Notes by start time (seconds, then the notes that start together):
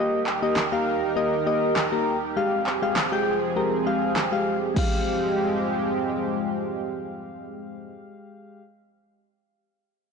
Already playing: D#3 A#3 D#4 G4 A#4 D#5
0.27 clap
0.42 A#3 G4 D#5
0.56 snare, clap
0.72 A#3 G4 F5
1.16 A#3 G4 D#5
1.46 A#3 G4 D#5
1.76 snare, clap
1.92 A#3 G4 A#4
2.36 F3 G#3 C4 G4 G#4 F5
2.66 clap
2.82 G#3 G4 F5
2.96 snare, clap
3.12 G#3 G4 G5
3.56 G#3 G4 A#4
3.86 G#3 G4 F5
4.16 snare, clap
4.32 G#3 G4 F5
4.75 F3 G#3 C4 G4, kick, crash
4.79 F5